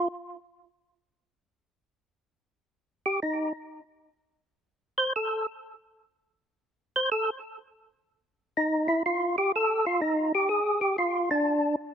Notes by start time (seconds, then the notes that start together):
3.06 G4
3.23 D#4
4.98 C5
5.16 A4
6.96 C5
7.12 A4
8.57 D#4
8.88 E4
9.06 F4
9.38 G4
9.56 A4
9.86 F4
10.01 D#4
10.35 G4
10.49 G#4
10.81 G4
10.98 F4
11.31 D4